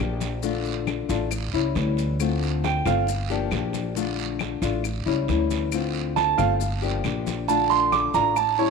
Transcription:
0.00 1.03 A#1 loud
0.00 0.42 F3 medium
0.00 0.43 A#3 medium
0.00 0.42 D4 medium
0.00 0.43 G4 medium
0.20 high conga medium
0.20 short guiro medium
0.20 maracas medium
0.42 1.08 D3 medium
0.42 1.09 A3 medium
0.42 1.09 D4 medium
0.42 1.08 F4 medium
0.42 high conga soft
0.42 long guiro medium
0.42 maracas medium
0.65 high conga soft
0.65 maracas soft
0.87 high conga loud
0.87 short guiro medium
0.87 claves medium
0.87 maracas soft
1.09 1.50 A1 loud
1.09 1.31 A3 medium
1.09 1.31 D4 medium
1.09 1.30 F4 medium
1.09 high conga soft
1.09 short guiro medium
1.09 maracas medium
1.31 muted nylon-string guitar stroke medium
1.31 high conga soft
1.31 long guiro medium
1.31 claves medium
1.31 maracas loud
1.53 1.74 C#2 medium
1.53 1.75 G3 medium
1.53 1.75 C#4 medium
1.53 1.75 E4 medium
1.53 high conga soft
1.53 maracas soft
1.75 2.80 D2 loud
1.75 2.19 E3 medium
1.75 2.19 G3 medium
1.75 2.20 C#4 medium
1.75 2.20 E4 medium
1.75 high conga medium
1.75 short guiro medium
1.75 maracas soft
1.97 short guiro medium
1.97 maracas medium
2.20 2.85 D3 medium
2.20 2.85 A3 medium
2.20 2.85 C4 medium
2.20 2.85 F4 medium
2.20 high conga soft
2.20 long guiro medium
2.20 claves medium
2.20 maracas medium
2.42 high conga soft
2.42 maracas soft
2.64 2.86 G5 medium
2.64 high conga loud
2.64 short guiro medium
2.64 maracas soft
2.85 3.48 G1 medium
2.85 3.08 A3 medium
2.85 3.07 C4 medium
2.85 3.07 F4 medium
2.85 3.08 F5 medium
2.85 high conga loud
2.85 low conga medium
2.85 short guiro medium
2.85 claves medium
2.85 maracas medium
3.07 muted nylon-string guitar stroke medium
3.07 high conga soft
3.07 long guiro medium
3.07 maracas loud
3.30 3.51 F3 medium
3.30 3.52 A#3 medium
3.30 3.51 D4 medium
3.30 3.51 G4 medium
3.30 high conga soft
3.30 maracas soft
3.51 4.56 A#1 medium
3.51 3.95 F3 medium
3.51 3.96 A#3 medium
3.51 3.95 D4 medium
3.51 3.96 G4 medium
3.51 high conga medium
3.51 short guiro medium
3.51 claves medium
3.51 maracas soft
3.73 high conga medium
3.73 short guiro medium
3.73 maracas medium
3.95 4.61 D3 medium
3.95 4.61 A3 medium
3.95 4.62 D4 medium
3.95 4.61 F4 medium
3.95 high conga soft
3.95 long guiro medium
3.95 maracas loud
4.18 high conga soft
4.18 maracas soft
4.39 high conga medium
4.39 short guiro medium
4.39 claves medium
4.39 maracas soft
4.62 5.03 A1 medium
4.62 4.84 A3 medium
4.62 4.84 D4 medium
4.62 4.83 F4 medium
4.62 high conga soft
4.62 short guiro medium
4.62 maracas medium
4.84 muted nylon-string guitar stroke medium
4.84 high conga soft
4.84 long guiro medium
4.84 claves medium
4.84 maracas loud
5.06 5.27 C#2 medium
5.06 5.28 G3 medium
5.06 5.28 C#4 medium
5.06 5.27 E4 medium
5.06 high conga soft
5.06 maracas soft
5.28 6.32 D2 medium
5.28 5.71 E3 medium
5.28 5.72 G3 medium
5.28 5.72 C#4 medium
5.28 5.72 E4 medium
5.28 high conga medium
5.28 short guiro medium
5.28 maracas soft
5.51 high conga medium
5.51 short guiro medium
5.51 maracas medium
5.72 6.38 D3 medium
5.72 6.38 A3 medium
5.72 6.37 C4 medium
5.72 6.36 F4 medium
5.72 high conga soft
5.72 long guiro medium
5.72 claves medium
5.72 maracas medium
5.94 high conga soft
5.94 maracas soft
6.16 6.38 A5 loud
6.16 high conga medium
6.16 short guiro medium
6.16 maracas soft
6.38 7.00 G1 medium
6.38 6.60 A3 medium
6.38 6.60 C4 medium
6.38 6.59 F4 medium
6.38 6.51 F5 medium
6.38 high conga medium
6.38 low conga medium
6.38 short guiro medium
6.38 claves medium
6.38 maracas medium
6.60 muted nylon-string guitar stroke medium
6.60 high conga soft
6.60 long guiro medium
6.60 maracas loud
6.82 7.03 F3 medium
6.82 7.03 A#3 medium
6.82 7.04 D4 medium
6.82 7.03 G4 medium
6.82 high conga soft
6.82 maracas soft
7.04 8.08 A#1 loud
7.04 7.47 F3 medium
7.04 7.48 A#3 medium
7.04 7.48 D4 medium
7.04 7.48 G4 medium
7.04 high conga medium
7.04 short guiro medium
7.04 claves medium
7.04 maracas soft
7.27 high conga medium
7.27 short guiro medium
7.27 maracas medium
7.48 8.13 D3 medium
7.48 8.14 A3 medium
7.48 8.14 D4 medium
7.48 8.13 F4 medium
7.48 7.70 A5 medium
7.48 high conga soft
7.48 long guiro medium
7.48 maracas medium
7.70 7.92 C6 loud
7.70 high conga soft
7.70 maracas soft
7.92 8.14 D6 loud
7.92 high conga loud
7.92 short guiro medium
7.92 claves medium
7.92 maracas soft
8.14 8.70 A1 medium
8.14 8.37 A3 medium
8.14 8.36 D4 medium
8.14 8.36 F4 medium
8.14 8.36 A#5 loud
8.14 high conga soft
8.14 short guiro medium
8.14 maracas medium
8.36 8.58 A5 medium
8.36 muted nylon-string guitar stroke medium
8.36 high conga soft
8.36 long guiro medium
8.36 claves medium
8.36 maracas medium
8.59 8.70 G3 medium
8.59 8.70 C#4 medium
8.59 8.70 E4 medium
8.59 8.70 C#5 medium
8.59 high conga soft
8.59 maracas soft

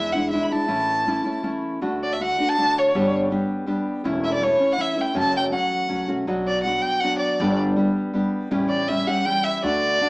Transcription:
0.00 0.43 E2 medium
0.00 0.13 E3 soft
0.00 0.14 G#3 soft
0.00 0.14 D4 medium
0.00 0.13 E4 soft
0.00 0.14 E5 medium
0.12 0.31 E3 soft
0.12 0.32 G#3 soft
0.12 0.32 D4 soft
0.12 0.32 E4 soft
0.12 0.30 F#5 medium
0.30 0.51 E3 soft
0.30 0.51 G#3 medium
0.30 0.50 D4 medium
0.30 0.50 E4 medium
0.30 0.45 E5 medium
0.43 0.53 B5 medium
0.51 0.67 E3 soft
0.51 0.68 G#3 soft
0.51 0.68 D4 soft
0.51 0.67 E4 soft
0.51 1.44 A5 medium
0.68 1.17 A1 medium
0.68 1.05 A2 medium
0.68 1.05 E3 medium
0.68 1.06 A3 medium
0.68 1.06 C#4 medium
0.68 1.06 E4 medium
1.06 1.25 E3 soft
1.06 1.25 A3 soft
1.06 1.24 C#4 medium
1.06 1.23 E4 medium
1.24 1.42 A3 soft
1.24 1.43 C#4 soft
1.24 1.43 E4 soft
1.43 1.81 E3 soft
1.43 1.81 A3 medium
1.43 1.82 C#4 medium
1.43 1.82 E4 medium
1.81 2.31 D2 medium
1.81 2.19 D3 medium
1.81 2.19 A3 medium
1.81 2.19 D4 medium
1.81 2.20 F#4 medium
2.03 2.14 D5 medium
2.13 2.23 E5 medium
2.20 2.39 D3 soft
2.20 2.39 A3 soft
2.20 2.38 D4 soft
2.20 2.37 F#4 medium
2.20 2.51 F#5 medium
2.38 2.57 A3 soft
2.38 2.57 D4 soft
2.38 2.57 F#4 soft
2.49 2.80 A5 loud
2.58 2.94 D3 soft
2.58 2.95 A3 soft
2.58 2.94 D4 medium
2.58 2.96 F#4 medium
2.78 3.15 C#5 medium
2.94 3.43 G1 loud
2.94 3.31 G2 medium
2.94 3.32 D3 medium
2.94 3.29 G3 medium
2.94 3.29 B3 medium
2.94 3.30 D4 medium
2.94 3.31 G4 medium
3.30 3.65 G3 soft
3.30 3.66 B3 medium
3.30 3.66 D4 medium
3.30 3.67 G4 medium
3.66 4.04 G3 medium
3.66 4.05 B3 medium
3.66 4.05 D4 medium
3.66 4.05 G4 medium
4.04 4.53 E1 loud
4.04 4.40 E3 medium
4.04 4.40 A3 medium
4.04 4.40 C#4 medium
4.04 4.41 E4 medium
4.24 4.32 E5 medium
4.34 4.45 D5 medium
4.41 4.60 E3 medium
4.41 4.60 A3 medium
4.41 4.59 C#4 medium
4.41 4.58 E4 soft
4.41 4.74 C#5 medium
4.59 4.77 A3 soft
4.59 4.77 C#4 soft
4.59 4.78 E4 soft
4.72 4.82 F#5 loud
4.77 4.97 E3 medium
4.77 4.96 A3 soft
4.77 4.96 C#4 medium
4.77 4.95 E4 medium
4.77 5.02 E5 medium
4.96 5.14 A3 soft
4.96 5.14 C#4 soft
4.96 5.15 E4 soft
5.01 5.17 G5 medium
5.14 5.53 F#1 loud
5.14 5.52 F#2 medium
5.14 5.52 C#3 medium
5.14 5.50 F#3 medium
5.14 5.51 A3 medium
5.14 5.51 C#4 medium
5.14 5.51 F#4 medium
5.19 5.35 A5 loud
5.37 5.45 G5 medium
5.51 5.88 F#3 soft
5.51 5.88 A3 soft
5.51 5.88 C#4 medium
5.51 5.89 F#4 soft
5.51 6.06 F#5 medium
5.73 5.89 E2 medium
5.89 6.08 C#2 medium
5.89 6.08 F#3 medium
5.89 6.08 A3 medium
5.89 6.07 C#4 medium
5.89 6.07 F#4 soft
6.08 6.26 B1 medium
6.08 6.27 F#3 soft
6.08 6.27 A3 soft
6.08 6.28 C#4 soft
6.08 6.27 F#4 medium
6.27 6.76 B1 medium
6.27 6.65 B2 medium
6.27 6.64 F#3 medium
6.27 6.65 B3 medium
6.27 6.65 D4 medium
6.27 6.65 F#4 medium
6.47 6.63 D5 medium
6.63 7.02 F#3 soft
6.63 7.02 B3 soft
6.63 7.03 D4 soft
6.63 7.03 F#4 medium
6.63 6.83 F#5 medium
6.81 7.01 G5 medium
7.00 7.40 F#3 medium
7.00 7.40 B3 medium
7.00 7.40 D4 medium
7.00 7.18 F#5 medium
7.04 7.41 F#4 medium
7.18 7.55 D5 medium
7.40 7.88 G1 loud
7.40 7.77 G2 medium
7.40 7.78 D3 medium
7.40 7.75 G3 medium
7.40 7.76 B3 medium
7.40 7.77 D4 medium
7.40 7.77 G4 medium
7.76 8.12 G3 medium
7.76 8.13 B3 medium
7.76 8.13 D4 medium
7.76 8.14 G4 medium
8.13 8.50 G3 medium
8.13 8.51 B3 medium
8.13 8.51 D4 medium
8.13 8.51 G4 medium
8.51 9.00 A1 loud
8.51 8.88 A2 medium
8.51 8.87 E3 medium
8.51 8.88 G3 medium
8.51 8.89 C#4 medium
8.51 8.89 G4 medium
8.69 8.90 D5 medium
8.89 9.08 E3 soft
8.89 9.08 G3 soft
8.89 9.07 C#4 medium
8.89 9.06 G4 soft
8.89 9.09 E5 medium
9.07 9.25 G3 soft
9.07 9.26 C#4 soft
9.07 9.26 G4 soft
9.07 9.27 F#5 medium
9.25 9.62 E3 soft
9.25 9.63 G3 medium
9.25 9.63 C#4 medium
9.25 9.63 G4 medium
9.25 9.45 G5 medium
9.44 9.62 E5 medium
9.63 10.09 D2 loud
9.63 9.99 D3 medium
9.63 10.00 A3 medium
9.63 10.01 D4 medium
9.63 10.01 F#4 medium
9.63 10.09 D5 medium
10.01 10.09 D3 medium
10.01 10.09 A3 medium
10.01 10.09 D4 soft
10.01 10.09 F#4 medium

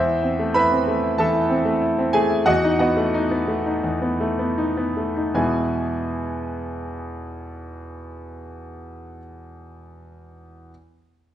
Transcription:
0.00 1.14 E2 medium
0.00 0.51 C5 medium
0.00 0.54 E5 medium
0.07 0.33 E4 soft
0.23 0.49 C4 soft
0.39 0.65 A3 soft
0.54 0.81 E4 soft
0.54 1.14 B4 medium
0.54 1.14 E5 medium
0.54 1.18 B5 medium
0.72 0.97 C4 soft
0.88 1.12 A3 soft
1.03 1.28 E4 soft
1.18 1.44 E3 soft
1.18 2.10 A4 medium
1.18 2.10 E5 soft
1.18 2.13 A5 medium
1.34 1.59 E4 soft
1.50 1.75 C4 soft
1.65 1.91 A3 soft
1.82 2.07 E4 medium
1.98 2.24 C4 soft
2.13 2.40 A3 medium
2.13 2.44 G#4 medium
2.13 2.46 G#5 medium
2.30 2.46 E4 soft
2.46 3.80 E2 medium
2.46 2.77 F#4 medium
2.46 2.77 D#5 medium
2.46 2.78 F#5 medium
2.64 2.90 D#4 medium
2.79 3.07 B3 soft
2.79 4.93 F#4 soft
2.79 4.93 D#5 soft
2.79 4.97 F#5 medium
2.97 3.24 A3 soft
3.14 3.42 D#4 medium
3.31 3.59 B3 soft
3.48 3.76 A3 soft
3.66 3.95 D#4 soft
3.84 5.32 E2 soft
4.02 4.31 B3 soft
4.20 4.50 A3 soft
4.39 4.70 B3 soft
4.58 4.89 D#4 soft
4.77 5.09 B3 soft
4.97 5.28 A3 soft
5.17 5.36 D#4 soft
5.34 9.17 E2 soft
5.34 9.17 B2 soft
5.34 9.18 G#3 soft
5.34 9.18 B3 soft
5.34 9.18 E4 soft
5.34 9.18 G#4 soft
5.34 9.18 G#5 soft

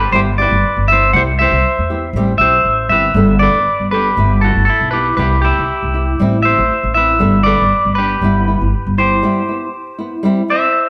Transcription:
0.00 0.12 G4 medium
0.00 0.12 B4 medium
0.12 0.48 G1 medium
0.12 0.29 G3 medium
0.12 0.29 B3 medium
0.12 0.29 E4 medium
0.12 0.22 G4 medium
0.12 0.30 G4 medium
0.12 0.19 C5 medium
0.38 0.56 B3 soft
0.38 0.55 E4 soft
0.38 0.54 G4 soft
0.38 0.87 B4 medium
0.38 0.85 D5 medium
0.51 0.62 G1 medium
0.76 1.10 G1 medium
0.88 1.06 E4 soft
0.88 1.12 E5 medium
0.88 muted nylon-string guitar stroke soft
0.92 1.06 B3 soft
0.92 1.14 C5 medium
1.13 1.49 C2 medium
1.13 1.30 G3 medium
1.13 1.31 E4 medium
1.13 1.31 G4 medium
1.13 1.23 C5 medium
1.13 1.20 F#5 medium
1.13 muted nylon-string guitar stroke medium
1.39 1.56 E4 soft
1.39 1.56 G4 soft
1.39 2.38 C5 medium
1.39 2.37 E5 medium
1.43 1.57 B3 soft
1.52 1.63 C2 medium
1.78 2.12 E2 medium
1.90 2.07 B3 soft
1.90 2.06 E4 soft
1.90 2.06 G4 soft
2.13 2.37 A1 medium
2.13 2.31 G3 medium
2.13 2.31 C4 medium
2.13 2.32 G4 medium
2.13 muted nylon-string guitar stroke medium
2.38 2.62 B1 medium
2.38 2.57 G4 soft
2.38 2.88 C5 medium
2.38 2.88 E5 medium
2.42 2.58 C4 soft
2.42 2.57 E4 soft
2.64 2.88 A1 medium
2.89 3.13 G1 medium
2.89 3.08 E4 soft
2.89 3.07 G4 soft
2.89 3.38 B4 medium
2.89 3.39 E5 medium
2.95 3.09 C4 soft
3.14 3.51 G1 loud
3.14 3.32 G3 medium
3.14 3.32 B3 medium
3.14 3.32 D4 medium
3.14 3.32 A4 medium
3.39 3.58 A4 soft
3.39 3.89 B4 medium
3.39 3.87 D5 medium
3.44 3.59 B3 soft
3.44 3.59 D4 soft
3.54 3.65 G1 medium
3.80 4.14 G1 medium
3.91 4.09 D4 soft
3.91 4.40 G4 medium
3.91 4.08 A4 soft
3.91 4.41 B4 medium
3.96 4.10 B3 soft
4.17 4.53 G1 medium
4.17 4.33 G3 medium
4.17 4.34 E4 medium
4.17 muted nylon-string guitar stroke medium
4.41 4.59 E4 soft
4.41 4.67 F#4 medium
4.41 4.64 A4 medium
4.46 4.60 B3 soft
4.55 4.67 G1 medium
4.65 4.90 A4 medium
4.70 4.92 E4 medium
4.80 5.15 B1 medium
4.91 5.09 E4 soft
4.91 5.17 G4 medium
4.91 5.16 B4 medium
4.96 5.11 B3 soft
5.17 5.54 C2 medium
5.17 5.34 G3 medium
5.17 5.35 B3 medium
5.17 5.35 E4 medium
5.17 5.40 G4 medium
5.17 5.41 B4 medium
5.42 6.41 E4 medium
5.42 5.60 E4 soft
5.42 6.40 G4 medium
5.48 5.62 B3 soft
5.58 5.68 C2 medium
5.83 6.17 C2 medium
5.94 6.11 B3 soft
5.94 6.10 E4 soft
6.19 6.56 A1 medium
6.19 6.36 G3 medium
6.19 6.36 C4 medium
6.19 6.37 E4 medium
6.43 6.62 C4 soft
6.43 6.61 E4 soft
6.43 6.92 C5 medium
6.43 6.91 E5 medium
6.58 6.69 A1 medium
6.83 7.17 A1 medium
6.94 7.13 C4 soft
6.94 7.11 E4 soft
6.94 7.44 B4 medium
6.94 7.42 E5 medium
7.19 7.56 G1 loud
7.19 7.36 G3 medium
7.19 7.36 B3 medium
7.19 7.37 D4 medium
7.19 7.37 A4 medium
7.43 7.62 A4 soft
7.43 7.93 B4 medium
7.43 7.95 D5 medium
7.48 7.63 B3 soft
7.48 7.63 D4 soft
7.60 7.71 G1 medium
7.85 8.19 G1 medium
7.95 8.14 D4 soft
7.95 8.95 G4 medium
7.95 8.98 B4 medium
8.00 8.15 B3 soft
8.22 8.57 G1 medium
8.22 8.38 G3 medium
8.22 8.39 B3 medium
8.22 8.39 E4 medium
8.48 8.65 B3 soft
8.48 8.64 E4 soft
8.61 8.72 G1 medium
8.87 9.20 G1 medium
8.98 9.15 B3 soft
8.98 9.14 E4 soft
8.98 10.47 G4 medium
8.98 10.46 C5 medium
9.23 9.39 G3 medium
9.23 9.40 B3 medium
9.23 9.40 E4 medium
9.49 9.66 B3 soft
9.49 9.65 E4 soft
9.98 10.16 B3 soft
9.98 10.15 E4 medium
10.23 10.40 G3 medium
10.23 10.41 C4 medium
10.23 10.41 E4 medium
10.48 10.66 C4 soft
10.48 10.89 C5 medium
10.48 10.89 E5 medium
10.48 muted nylon-string guitar stroke soft

